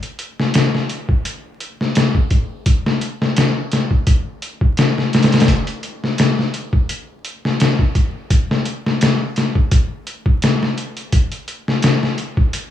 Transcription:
0.03 closed hi-hat
0.19 closed hi-hat
0.39 snare
0.54 snare, closed hi-hat
0.75 snare
0.89 closed hi-hat
1.09 kick
1.25 closed hi-hat
1.60 closed hi-hat
1.81 snare
1.95 snare, closed hi-hat
2.15 kick
2.30 kick, closed hi-hat
2.66 kick, closed hi-hat
2.86 snare
3.01 closed hi-hat
3.22 snare
3.37 snare, closed hi-hat
3.72 snare, closed hi-hat
3.91 kick
4.07 kick, closed hi-hat
4.42 closed hi-hat
4.61 kick
4.77 snare, closed hi-hat
4.98 snare
5.13 snare, closed hi-hat
5.23 snare, closed hi-hat
5.32 snare, closed hi-hat
5.40 snare, closed hi-hat
5.48 kick, closed hi-hat
5.67 closed hi-hat
5.83 closed hi-hat
6.04 snare
6.18 snare, closed hi-hat
6.39 snare
6.54 closed hi-hat
6.73 kick
6.89 closed hi-hat
7.25 closed hi-hat
7.45 snare
7.60 snare, closed hi-hat
7.79 kick
7.95 kick, closed hi-hat
8.30 kick, closed hi-hat
8.51 snare
8.65 closed hi-hat
8.86 snare
9.01 snare, closed hi-hat
9.36 snare, closed hi-hat
9.55 kick
9.71 kick, closed hi-hat
10.07 closed hi-hat
10.26 kick
10.42 snare, closed hi-hat
10.63 snare
10.78 closed hi-hat
10.97 closed hi-hat
11.12 kick, closed hi-hat
11.32 closed hi-hat
11.48 closed hi-hat
11.68 snare
11.82 snare, closed hi-hat
12.03 snare
12.18 closed hi-hat
12.37 kick
12.53 closed hi-hat

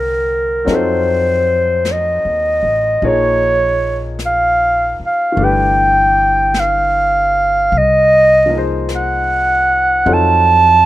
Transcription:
Already playing: C2 D3 G3 C4 F4 A#4
0.65 F2 F#3 C4 D#4, brush sweep, snare
0.69 F4 A4
0.75 C5
1.85 brush sweep, snare, hi-hat pedal
1.92 D#5
2.25 D#2
2.63 A1
3.02 A#1 F3 A#3 D#4 G#4 C#5, brush sweep
3.08 C#5
4.19 brush sweep, snare, hi-hat pedal
4.26 F5
5.00 muted upright bass stroke
5.06 F5
5.32 E3 A3
5.37 G1 D4 G4, brush sweep
5.43 B4 G5
6.54 brush sweep, snare, hi-hat pedal
6.60 F5
7.72 C2, brush sweep
7.78 D#5
8.46 F3 A#3
8.51 D#4 G#4
8.57 C5
8.89 brush sweep, snare, hi-hat pedal
8.96 F#5
10.05 F2 F#3 C4 D#4 F4 A4, brush sweep
10.13 A5

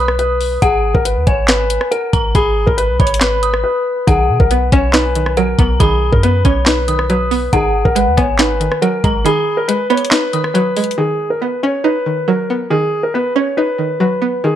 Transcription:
Already playing: B1 B4 D#6
0.08 cross-stick
0.19 B4, closed hi-hat
0.41 open hi-hat
0.62 G#1 G#4 F#5, kick, closed hi-hat
0.94 G#1 A#4, kick
1.05 B4, closed hi-hat
1.16 D#2
1.27 G#1 C#5 G#5, kick, closed hi-hat
1.48 B4, snare, clap, closed hi-hat
1.70 closed hi-hat
1.81 cross-stick
1.91 A#4 F#5, closed hi-hat
2.13 G#1 A#5, kick, closed hi-hat
2.35 G#1 G#4 B5, kick, closed hi-hat
2.67 G#1 A#4, kick
2.78 B4, closed hi-hat
2.89 B1
3.00 G#1 C#5 B5, kick, closed hi-hat
3.07 closed hi-hat
3.14 closed hi-hat
3.21 B4, snare, clap, closed hi-hat
3.43 D#6, closed hi-hat
3.54 cross-stick
3.64 B4
4.07 B1 D#3 G#4 F#5, kick, closed hi-hat
4.29 B2
4.40 B1 A#4, kick
4.51 B3 B4, closed hi-hat
4.72 B1 C#4 C#5 G#5, kick, closed hi-hat
4.93 D#4 B4, snare, clap, closed hi-hat
5.15 D#3, closed hi-hat
5.26 cross-stick
5.37 F#3 A#4 F#5, closed hi-hat
5.59 B1 B3 A#5, kick, closed hi-hat
5.80 B1 D#3 G#4 B5, kick, closed hi-hat
6.12 F#2 A#4, kick
6.23 B3 B4, closed hi-hat
6.45 B1 C#4 C#5 B5, kick, closed hi-hat
6.66 D#4 B4, snare, clap, closed hi-hat
6.88 D#3 D#6, closed hi-hat
6.99 cross-stick
7.10 F#3 B4, closed hi-hat
7.31 B3, open hi-hat
7.53 G#1 D#3 G#4 F#5, kick, closed hi-hat
7.85 G#1 A#4, kick
7.95 G#3 B4, closed hi-hat
8.07 D#2
8.17 G#1 B3 C#5 G#5, kick, closed hi-hat
8.39 D#4 B4, snare, clap, closed hi-hat
8.60 D#3, closed hi-hat
8.72 cross-stick
8.82 F#3 A#4 F#5, closed hi-hat
9.04 G#1 G#3 A#5, kick, closed hi-hat
9.25 D#3 G#4 B5, closed hi-hat
9.57 A#4
9.68 G#3 B4, closed hi-hat
9.90 B3 C#5 B5, closed hi-hat
9.97 closed hi-hat
10.05 closed hi-hat
10.11 D#4 B4, snare, clap, closed hi-hat
10.33 D#3 D#6, closed hi-hat
10.44 cross-stick
10.54 F#3 B4, closed hi-hat
10.77 G#3, closed hi-hat, open hi-hat
10.84 closed hi-hat
10.91 closed hi-hat
10.98 D#3 G#4
11.30 A#4
11.41 B3 B4
11.63 C#4 C#5
11.84 D#4 B4
12.06 D#3
12.28 F#3 A#4
12.50 B3
12.70 D#3 G#4
13.03 A#4
13.14 B3 B4
13.36 C#4 C#5
13.57 D#4 B4
13.78 D#3
14.00 F#3 B4
14.22 B3
14.44 D#3 G#4

